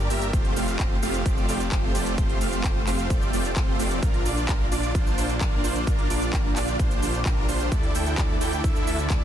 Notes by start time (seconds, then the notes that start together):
Already playing: A#3 D4 F4 D5
0.10 G1 G4 A#4 E5, open hi-hat, cabasa
0.22 closed hi-hat, cabasa
0.33 F1 A3 C4 F4 G4 C5, kick, closed hi-hat, cabasa
0.45 closed hi-hat
0.56 F1 A3 C4 F4 G4 F5, open hi-hat, cabasa
0.68 closed hi-hat, cabasa
0.79 F1 A3 C4 F4 G4 C5, kick, clap, closed hi-hat, cabasa
1.03 F1 A3 C4 F4 G4 F5, open hi-hat, cabasa
1.14 closed hi-hat, cabasa
1.26 F1 A3 C4 F4 G4 D5, kick, closed hi-hat, cabasa
1.37 cabasa
1.49 F1 A3 C4 F4 G4 D5, open hi-hat, cabasa
1.60 closed hi-hat, cabasa
1.72 F1 A3 C4 F4 G4 C5, kick, clap, closed hi-hat, cabasa
1.95 F1 A3 C4 F4 G4 D5, open hi-hat, cabasa
2.06 closed hi-hat, cabasa
2.18 F1 A3 C4 F4 G4 A4 C5, kick, closed hi-hat, cabasa
2.29 closed hi-hat
2.41 F1 A3 C4 F4 G4 F5, open hi-hat, cabasa
2.53 closed hi-hat, cabasa
2.64 F1 A3 C4 F4 G4 C5, kick, clap, closed hi-hat, cabasa
2.87 F1 A3 C4 F4 G4 F5, clap, open hi-hat, cabasa
2.99 closed hi-hat, cabasa
3.10 F1 A3 C4 F4 G4 D5, kick, closed hi-hat, cabasa
3.22 cabasa
3.33 F1 A3 C4 F4 G4 D5, open hi-hat, cabasa
3.45 closed hi-hat, cabasa
3.56 F1 A3 C4 F4 G4 C5, kick, clap, closed hi-hat, cabasa
3.79 F1 A3 C4 F4 G4 D5, open hi-hat, cabasa
3.91 closed hi-hat, cabasa
4.03 A#1 A#3 D4 F4 A#4 D5, kick, closed hi-hat, cabasa
4.14 closed hi-hat
4.26 A#1 D4 F4 D5, open hi-hat, cabasa
4.37 closed hi-hat, cabasa
4.49 A#1 D4 F4 A#4, kick, clap, closed hi-hat, cabasa
4.72 A#1 D4 F4 D5, open hi-hat, cabasa
4.83 closed hi-hat, cabasa
4.95 A#1 D4 F4 C5, kick, closed hi-hat, cabasa
5.07 cabasa
5.18 A#1 D4 F4 C5, open hi-hat, cabasa
5.29 closed hi-hat, cabasa
5.41 A#1 D4 F4 A#4, kick, clap, closed hi-hat, cabasa
5.64 A#1 D4 F4 C5, open hi-hat, cabasa
5.76 closed hi-hat, cabasa
5.87 A#1 D4 F4 G4 A#4, kick, closed hi-hat, cabasa
5.99 closed hi-hat
6.10 A#1 D4 F4 D5, open hi-hat, cabasa
6.22 closed hi-hat, cabasa
6.33 A#1 D4 F4 A#4, kick, clap, closed hi-hat, cabasa
6.56 A#1 D4 F4 D5, clap, open hi-hat, cabasa
6.68 closed hi-hat, cabasa
6.79 A#1 D4 F4 C5, kick, closed hi-hat, cabasa
6.91 closed hi-hat, cabasa
7.02 A#1 D4 F4 C5, open hi-hat, cabasa
7.14 closed hi-hat, cabasa
7.26 A#1 D4 F4 A#4, kick, clap, closed hi-hat, cabasa
7.49 A#1 D4 F4 C5, open hi-hat, cabasa
7.60 closed hi-hat, cabasa
7.72 D2 A3 E4 A4 D5, kick, closed hi-hat, cabasa
7.83 closed hi-hat
7.95 D2 E4 A4 G5, open hi-hat, cabasa
8.06 closed hi-hat, cabasa
8.18 D2 E4 A4 D5, kick, clap, closed hi-hat, cabasa
8.41 D2 E4 A4 G5, open hi-hat, cabasa
8.52 closed hi-hat, cabasa
8.64 D2 E4 A4 E5, kick, closed hi-hat, cabasa
8.76 cabasa
8.87 D2 E4 A4 E5, open hi-hat, cabasa
8.99 closed hi-hat, cabasa
9.10 D2 E4 A4 D5, kick, clap, closed hi-hat, cabasa